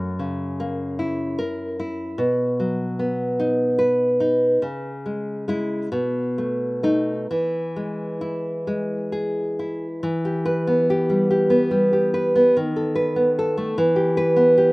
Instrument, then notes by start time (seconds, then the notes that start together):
nylon-string guitar
Already playing: F#2
0.19 C#3
0.60 A#3
0.99 E4
1.39 A#4
1.80 E4
2.18 B2
2.60 F#3
2.99 B3
3.40 D#4
3.79 B4
4.20 D#4
4.62 C#3
5.06 G#3
5.48 G#3 E4
5.92 B2
6.38 A3
6.83 A3 D#4
7.31 E3
7.76 G#3
8.21 E4
8.67 G#3
9.12 G#4
9.59 E4
10.03 E3
10.25 G4
10.46 B4
10.67 B3
10.90 G4
11.10 G3
11.30 G4
11.50 B3
11.71 G3
11.93 G4
12.14 B4
12.35 B3
12.57 D#3
12.76 A4
12.95 B4
13.16 B3
13.39 A4
13.57 A3
13.78 E3
13.96 G4
14.17 B4
14.36 B3
14.58 G4